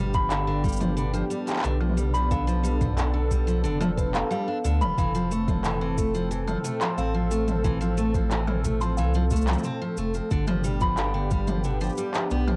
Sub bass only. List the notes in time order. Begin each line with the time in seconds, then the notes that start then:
Already playing: G1
1.64 B1
3.65 F1
4.65 D2
4.82 D1
4.98 F1
6.98 A1
8.97 C2
9.97 F1
10.31 G1
12.31 B1